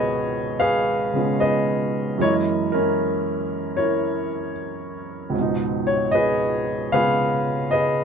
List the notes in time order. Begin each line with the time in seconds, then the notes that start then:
Already playing: C#2 G#2 B2 D#3 F3 G#4 B4 C#5 D#5
0.60 G#4 B4 F5
1.14 C#3 F3 G#3 B3 C#4
1.40 G#4 B4 D#5
2.18 F#2 E3 G#3 C#5
2.22 A#3 E4 A#4 D#5
2.72 C#4 E4 A#4
3.77 E4 A#4 C#5
5.30 C#2 G#2
5.34 F3
5.39 B2 D#4
5.87 C#5
6.11 G#4 B4 D#5
6.92 C#3 G#3 B3 C#4 F4 G#4 B4 F5
7.71 G#4 B4 D#5